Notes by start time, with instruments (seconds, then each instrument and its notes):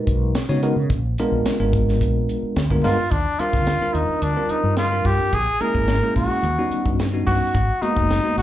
Already playing: tine electric piano G#3 D#4 F#4 A#4 B4
0.07 fretless electric bass B1, kick, closed hi-hat
0.35 snare, closed hi-hat
0.49 fretless electric bass C#3, tine electric piano G#3 B3 D#4 F#4 C#5, snare
0.63 tine electric piano G#3 B3 D#4 F#4 A#4, closed hi-hat
0.76 fretless electric bass C#3, tine electric piano F#4 A#4
0.90 fretless electric bass A#1, kick, closed hi-hat
1.18 tine electric piano G#3 B3 D4 F4 A#4, closed hi-hat
1.31 fretless electric bass A#1
1.45 muted fretless electric bass stroke, snare, closed hi-hat
1.59 fretless electric bass G#1, tine electric piano G#3 B3 D4 F4 A#4
1.73 kick, closed hi-hat
1.88 snare
2.01 fretless electric bass A#1, kick, closed hi-hat
2.29 closed hi-hat
2.42 muted fretless electric bass stroke
2.56 fretless electric bass D2, snare, closed hi-hat
2.70 tine electric piano G#3 B3 D4 F4 A#4, kick
2.84 fretless electric bass G2, tine electric piano G#3 B3 D4 F4 A#4, trumpet F4, open hi-hat
2.98 tine electric piano F4 G4, muted fretless electric bass stroke
3.11 fretless electric bass D#2, trumpet D4, kick, closed hi-hat
3.39 tine electric piano G3 C4 D4 F4 A#4, trumpet F4, muted fretless electric bass stroke, closed hi-hat
3.53 fretless electric bass D2, kick, snare
3.67 snare, closed hi-hat
3.81 tine electric piano G3 C4 D4 F4 A#4, muted fretless electric bass stroke
3.94 fretless electric bass D#2, trumpet D#4, closed hi-hat
4.09 muted fretless electric bass stroke
4.22 fretless electric bass D2, trumpet D4, closed hi-hat
4.37 tine electric piano G3 C4 D4 F4 A#4
4.49 trumpet D#4, muted fretless electric bass stroke, closed hi-hat
4.63 fretless electric bass G2
4.77 trumpet F4, snare, closed hi-hat
4.92 tine electric piano G3 C4 D4 F4 A#4
5.05 fretless electric bass G2, trumpet G4, kick, open hi-hat
5.19 muted fretless electric bass stroke
5.33 fretless electric bass A#1, trumpet G#4, kick, closed hi-hat
5.60 tine electric piano G#3 A#3 C#4 E4 G#4, trumpet A#4, muted fretless electric bass stroke, closed hi-hat
5.75 fretless electric bass G#1, kick
5.88 snare, closed hi-hat
6.01 tine electric piano G#3 A#3 C#4 E4 G#4, muted fretless electric bass stroke
6.16 fretless electric bass A#1, trumpet F#4, kick, open hi-hat
6.29 muted fretless electric bass stroke
6.43 fretless electric bass D#2, closed hi-hat
6.59 tine electric piano G3 B3 C#4 D#4 F#4
6.70 muted fretless electric bass stroke, closed hi-hat
6.86 fretless electric bass G2, kick
7.00 snare, closed hi-hat
7.13 tine electric piano G3 B3 C#4 D#4 F#4
7.27 fretless electric bass G2, trumpet F#4, kick, open hi-hat
7.40 muted fretless electric bass stroke
7.54 fretless electric bass G#1, kick, closed hi-hat
7.81 tine electric piano G#3 A#3 B3 D#4 F#4, trumpet D#4, muted fretless electric bass stroke, closed hi-hat
7.97 fretless electric bass F#1, kick
8.11 snare, closed hi-hat
8.24 tine electric piano G#3 A#3 B3 D#4 F#4
8.37 fretless electric bass G#1, trumpet F#4, snare, closed hi-hat